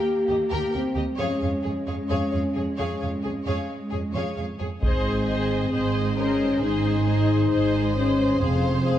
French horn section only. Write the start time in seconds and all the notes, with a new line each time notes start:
Already playing: G4
0.75 C4
1.20 C#4
4.82 C4
6.16 C#4
6.62 D#4
7.97 C#4
8.41 C4